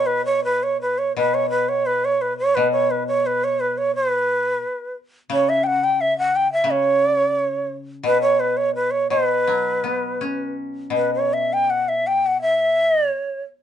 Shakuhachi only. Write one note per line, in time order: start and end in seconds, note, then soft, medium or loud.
0.06 0.25 B4 medium
0.26 0.44 C#5 medium
0.44 0.65 B4 medium
0.63 0.81 C#5 medium
0.81 1.00 B4 medium
0.98 1.16 C#5 medium
1.17 1.36 B4 medium
1.34 1.50 C#5 medium
1.50 1.70 B4 medium
1.69 1.88 C#5 medium
1.86 2.06 B4 medium
2.05 2.23 C#5 medium
2.21 2.38 B4 medium
2.38 2.57 C#5 medium
2.55 2.71 B4 medium
2.72 2.92 C#5 medium
2.91 3.07 B4 medium
3.08 3.28 C#5 medium
3.26 3.45 B4 medium
3.44 3.62 C#5 medium
3.60 3.79 B4 medium
3.78 3.95 C#5 medium
3.95 4.93 B4 medium
5.33 5.51 C#5 medium
5.49 5.65 E5 medium
5.64 5.85 F#5 medium
5.64 5.68 G5 medium
5.84 6.02 G5 medium
6.01 6.17 E5 medium
6.18 6.37 F#5 medium
6.36 6.52 G5 medium
6.53 6.72 E5 medium
6.71 7.71 C#5 medium
8.06 8.21 B4 medium
8.22 8.41 C#5 medium
8.40 8.58 B4 medium
8.57 8.75 C#5 medium
8.75 8.92 B4 medium
8.91 9.10 C#5 medium
9.10 10.51 B4 medium
10.96 11.11 B4 medium
11.14 11.35 C#5 medium
11.33 11.55 E5 medium
11.53 11.72 G5 medium
11.70 11.90 F#5 medium
11.89 12.08 E5 medium
12.07 12.28 G5 medium
12.26 12.41 F#5 medium
12.42 13.08 E5 medium
13.08 13.41 C#5 medium